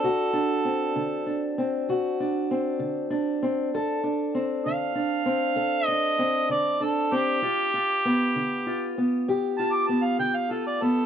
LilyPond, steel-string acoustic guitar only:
\new Staff \with { instrumentName = "Steel-string acoustic guitar" } { \time 12/8 \key g \major \tempo 4. = 65 << { fis'8 d'8 c'4 d'8 c'8 fis'8 d'8 c'4 d'8 c'8 | a'8 d'8 c'4 d'8 c'8 a'8 d'8 c'4 d'8 c'8 | f'8 f'8 b4 f'8 b8 g'8 f'8 b4 f'8 b8 | } \\ { d,4 r8 d4 r8 d,4 r8 d4 r8 | d,4 r8 d4 r8 d,4 r8 d4 r8 | g,4 r8 d4 r8 g,4 r8 d4 r8 | } >> }